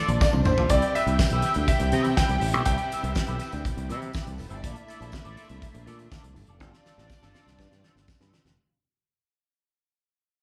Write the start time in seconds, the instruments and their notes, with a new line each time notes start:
Already playing: string section A3 A#3 D4, violin section D4 D5, clean electric guitar F4
0.00 clean electric guitar A4
0.08 fingered electric bass A#1, muted clean electric guitar stroke, closed hi-hat, high conga
0.21 clean electric guitar F4 A4 D5, grand piano D5, kick, snare, tambourine
0.33 fingered electric bass C2, muted clean electric guitar stroke, high tom, muted conga, high conga
0.37 violin section C4 C5
0.44 fingered electric bass A#1, violin section D4 D5, grand piano C5, muted clean electric guitar stroke, mid tom, tambourine, low conga
0.53 violin section E4 E5
0.58 fingered electric bass A#1, clean electric guitar F4 A4 D5, floor tom
0.62 violin section F4 F5
0.69 fingered electric bass C2, string section C3 G3 B3 E4, violin section G4 G5, clean electric guitar G4 B4 E5, grand piano D5, kick, closed hi-hat, tambourine
0.82 muted clean electric guitar stroke, closed hi-hat
0.95 clean electric guitar G4 B4 E5, grand piano E5, closed hi-hat, tambourine
1.07 fingered electric bass C2, clean electric guitar G4 B4 E5, closed hi-hat, tambourine
1.19 muted clean electric guitar stroke, kick, snare, tambourine, muted conga, high conga
1.30 fingered electric bass B1, clean electric guitar B4 E5, closed hi-hat
1.34 clean electric guitar G4
1.42 clean electric guitar G4 B4, closed hi-hat, tambourine, high conga
1.46 clean electric guitar E5
1.54 fingered electric bass D2, muted clean electric guitar stroke, closed hi-hat, tambourine
1.68 grand piano E5, kick, closed hi-hat, tambourine, low conga
1.80 fingered electric bass C2, muted clean electric guitar stroke, closed hi-hat, tambourine, muted conga
1.92 fingered electric bass C3, clean electric guitar G4 B4 E5, closed hi-hat, tambourine, high conga
2.05 muted clean electric guitar stroke, closed hi-hat, tambourine, high conga
2.17 clean electric guitar G4 B4 E5, grand piano G5, kick, snare, tambourine
2.29 fingered electric bass C2, muted clean electric guitar stroke, closed hi-hat, high conga
2.40 fingered electric bass A1, muted clean electric guitar stroke, open hi-hat, tambourine, low conga
2.52 fingered electric bass B1, clean electric guitar G4 B4 E5, closed hi-hat
2.65 fingered electric bass C2, clean electric guitar G4 B4 E5, grand piano G5, kick, closed hi-hat, tambourine
2.78 muted clean electric guitar stroke, closed hi-hat
2.92 clean electric guitar G4 B4 E5, closed hi-hat, tambourine
3.03 fingered electric bass C2, clean electric guitar G4 B4 E5, closed hi-hat
3.15 muted clean electric guitar stroke, kick, snare, tambourine, muted conga, high conga
3.27 fingered electric bass B1, clean electric guitar G4 B4 E5, closed hi-hat, muted conga
3.40 clean electric guitar G4 B4 E5, closed hi-hat, tambourine, high conga
3.52 fingered electric bass D2, muted clean electric guitar stroke, closed hi-hat, tambourine
3.65 kick, closed hi-hat, tambourine, muted conga, low conga
3.77 fingered electric bass C2, muted clean electric guitar stroke, closed hi-hat
3.89 fingered electric bass C3, clean electric guitar G4 B4 E5, closed hi-hat, tambourine, high conga
4.02 muted clean electric guitar stroke, closed hi-hat, high conga
4.07 violin section E4
4.13 violin section F4, clean electric guitar G4 B4 E5, kick, snare, tambourine
4.23 fingered electric bass C2, violin section G3 G4, muted clean electric guitar stroke, high conga
4.27 violin section A3 A4, closed hi-hat
4.37 fingered electric bass F1, violin section B3 B4, muted clean electric guitar stroke, open hi-hat, tambourine, low conga
4.46 violin section C4 C5
4.50 fingered electric bass G1, clean electric guitar G4 B4 E5, closed hi-hat
4.55 violin section D4 D5
4.63 fingered electric bass A#1, string section A3 A#3 D4, violin section E4 E5, clean electric guitar F4 A4 D5, kick, closed hi-hat, tambourine, muted conga
4.76 muted clean electric guitar stroke, closed hi-hat, muted conga
4.88 clean electric guitar F4 A4 D5, closed hi-hat, tambourine
5.00 fingered electric bass A#1, clean electric guitar F4 A4 D5, closed hi-hat, tambourine
5.12 muted clean electric guitar stroke, kick, snare, tambourine, muted conga, high conga
5.24 fingered electric bass A1, clean electric guitar F4 A4 D5, closed hi-hat, muted conga
5.36 clean electric guitar F4 A4 D5, closed hi-hat, tambourine, high conga
5.49 fingered electric bass C2, muted clean electric guitar stroke, closed hi-hat, tambourine
5.62 kick, closed hi-hat, tambourine, muted conga, low conga
5.74 fingered electric bass A#1, muted clean electric guitar stroke, closed hi-hat, tambourine, muted conga
5.86 fingered electric bass A#2, clean electric guitar F4 A4 D5, closed hi-hat, tambourine, high conga
5.99 muted clean electric guitar stroke, closed hi-hat, tambourine, high conga
6.11 clean electric guitar F4 A4 D5, kick, snare, tambourine
6.23 fingered electric bass C2, muted clean electric guitar stroke, closed hi-hat, high conga
6.34 fingered electric bass G1, muted clean electric guitar stroke, open hi-hat, tambourine, low conga
6.47 fingered electric bass F1, clean electric guitar F4 A4 D5, closed hi-hat
6.60 fingered electric bass G1, string section G3 C4 F4, clean electric guitar C4 F4 A4, violin section D4 D5, kick, snare, tambourine, muted conga, low conga
6.74 muted clean electric guitar stroke, snare, muted conga
6.86 clean electric guitar C4 F4 A4, snare, tambourine
6.98 fingered electric bass A1, clean electric guitar C4 F4 A4, snare
7.09 muted clean electric guitar stroke, kick, snare, tambourine, muted conga, high conga
7.22 fingered electric bass G1, clean electric guitar C4 F4 A4, snare
7.34 clean electric guitar C4 F4 A4, snare, tambourine, high conga
7.47 fingered electric bass C2, muted clean electric guitar stroke, snare
7.59 fingered electric bass G2, kick, snare, tambourine, muted conga, low conga
7.71 fingered electric bass G2, muted clean electric guitar stroke, snare, tambourine, muted conga
7.84 clean electric guitar C4 F4 A4, snare, tambourine, high conga
7.96 fingered electric bass G1, muted clean electric guitar stroke, snare, tambourine, high conga
8.08 muted clean electric guitar stroke, kick, snare, tambourine
8.20 fingered electric bass G2, clean electric guitar C4 F4 A4, snare, muted conga, high conga
8.31 muted clean electric guitar stroke, snare, tambourine, low conga
8.45 fingered electric bass F1, muted clean electric guitar stroke, snare